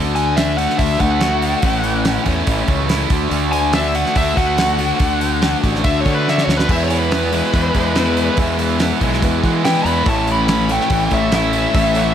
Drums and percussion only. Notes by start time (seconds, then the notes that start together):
0.16 open hi-hat
0.37 snare, open hi-hat
0.58 open hi-hat
0.70 snare
0.79 kick, open hi-hat
1.00 kick, open hi-hat
1.21 snare, open hi-hat
1.42 open hi-hat
1.62 kick, open hi-hat
1.84 open hi-hat
2.05 snare, open hi-hat
2.26 kick, open hi-hat
2.47 kick, open hi-hat
2.68 kick, open hi-hat
2.89 snare, open hi-hat
3.10 kick, open hi-hat
3.31 open hi-hat
3.53 open hi-hat
3.73 snare, open hi-hat
3.95 open hi-hat
4.06 snare
4.15 kick, open hi-hat
4.37 kick, open hi-hat
4.58 snare, open hi-hat
4.79 open hi-hat
5.00 kick, open hi-hat
5.21 open hi-hat
5.42 snare, open hi-hat
5.64 kick, open hi-hat
5.75 snare
5.84 kick, open hi-hat
6.06 kick, open hi-hat
6.28 snare
6.38 snare
6.49 snare
6.59 snare
6.69 kick, open hi-hat, crash
6.90 open hi-hat
7.12 snare, open hi-hat
7.33 open hi-hat
7.54 kick, open hi-hat
7.75 kick, open hi-hat
7.95 snare, open hi-hat
8.17 open hi-hat
8.37 kick, open hi-hat
8.59 open hi-hat
8.80 snare, open hi-hat
9.01 kick, open hi-hat
9.13 snare
9.22 kick, open hi-hat
9.44 kick, open hi-hat
9.65 snare, open hi-hat
9.86 open hi-hat
10.06 kick, open hi-hat
10.27 open hi-hat
10.48 snare, open hi-hat
10.69 open hi-hat
10.81 snare
10.90 kick, open hi-hat
11.11 kick, open hi-hat
11.32 snare, open hi-hat
11.53 open hi-hat
11.74 kick, open hi-hat
11.95 open hi-hat